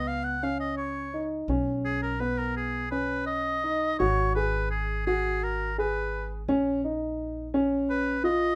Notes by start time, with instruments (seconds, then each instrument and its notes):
Already playing: upright bass C#2, grand piano B3
0.08 oboe F5
0.24 oboe F#5
0.43 grand piano C#4, oboe F5
0.60 oboe D#5
0.77 oboe C#5
1.14 grand piano D#4
1.48 upright bass B1, grand piano C#4
1.85 oboe G#4
2.03 oboe A#4
2.20 grand piano B3, oboe B4
2.39 oboe A#4
2.57 oboe G#4
2.91 grand piano C#4, oboe B4
3.27 oboe D#5
3.64 grand piano D#4
3.99 upright bass G#1, grand piano F#4, oboe C#5
4.35 grand piano G#4, oboe B4
4.71 oboe G#4
5.07 grand piano F#4, oboe G#4
5.44 oboe A#4
5.78 grand piano G#4, oboe B4
6.48 upright bass A#1, grand piano C#4
6.84 grand piano D#4
7.54 grand piano C#4
7.90 oboe B4
8.24 grand piano F4, oboe D#5